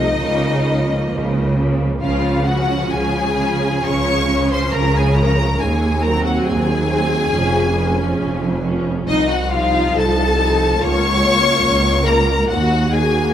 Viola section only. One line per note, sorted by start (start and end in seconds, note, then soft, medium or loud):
0.00 0.20 F3 medium
0.00 0.20 A3 medium
0.21 0.64 F3 medium
0.21 0.65 A#3 medium
0.66 1.55 F3 medium
0.66 1.56 A#3 medium
1.59 2.01 F3 medium
1.59 2.02 A#3 medium
2.02 2.46 F3 medium
2.02 2.46 C#4 medium
2.47 3.36 F3 medium
2.47 3.37 C#4 medium
3.39 4.28 F3 medium
3.39 4.28 C#4 medium
4.29 5.15 F3 medium
4.29 5.15 C#4 medium
5.17 5.59 F3 medium
5.17 5.59 C#4 medium
6.02 6.86 F#3 medium
6.02 6.87 C4 medium
6.88 7.31 F#3 medium
6.88 7.31 C4 medium
7.33 7.75 F3 medium
7.33 7.74 C#4 medium
7.76 8.62 F3 medium
7.76 8.62 C#4 medium
8.64 9.07 F3 medium
8.64 9.07 C#4 medium
9.52 10.37 F3 medium
9.52 10.37 D#4 medium
10.40 10.80 F3 medium
10.40 10.80 D#4 medium
10.80 11.21 A#3 medium
10.80 11.21 F4 medium
11.22 12.04 A#3 medium
11.22 12.04 F4 medium
12.07 12.48 A#3 medium
12.07 12.48 F4 medium
12.92 13.34 A#3 medium
12.92 13.34 F#4 medium